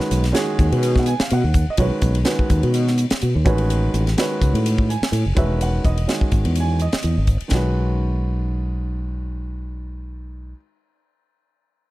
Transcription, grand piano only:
Already playing: D#3 G#3 C#4 F#4 B4
0.32 D#3 G#3 C#4 F#4 G#4
0.99 F#5
1.08 G#5
1.22 F5
1.33 F#5
1.70 D#5
1.78 D#3 G#3 C#4 F#4 B4 C#5
2.24 D#3 G#3 C#4 F#4 B4
3.45 D#3 G#3 C#4 F#4 B4
4.17 D#3 G#3 C#4 F#4 B4
4.90 G#5
5.35 D#3 G#3 C#4 F#4 B4 E5
5.63 F#5
5.85 D#5
6.07 D#3 G#3 C#4 F#4 C#5
6.60 G#5
6.82 D#5
7.48 D#3 G#3 C#4
7.54 F#4 B4

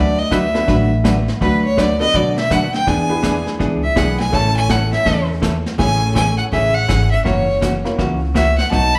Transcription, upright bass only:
Already playing: D2
0.68 A1
1.41 D2
2.15 B2
2.88 E2
3.60 C#2
3.96 B1
4.33 A1
5.06 E2
5.79 A1
6.52 A1
6.89 G#1
7.26 F#1
7.99 C#2
8.72 B1

